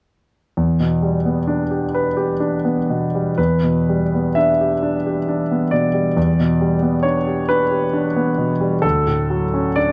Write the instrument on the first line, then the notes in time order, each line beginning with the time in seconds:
grand piano
0.57 E2
0.80 B2
1.02 G3
1.26 B3
1.48 D4
1.71 G4
1.95 B4
2.17 G4
2.40 D4
2.65 B3
2.90 B2
3.15 G3
3.38 E2 B4
3.63 B2
3.89 G3
4.14 B3
4.35 D4 E5
4.60 G4
4.83 D4
5.06 G4
5.28 D4
5.51 B3
5.71 B2 D5
5.94 G3
6.17 E2
6.40 B2
6.61 G3
6.82 B3
7.03 D4 C#5
7.27 G4
7.49 D4 B4
7.71 G4
7.93 D4
8.16 B3
8.38 B2
8.61 G3
8.82 D2 A4
9.07 A2
9.30 F#3
9.54 C#4
9.76 D4 D5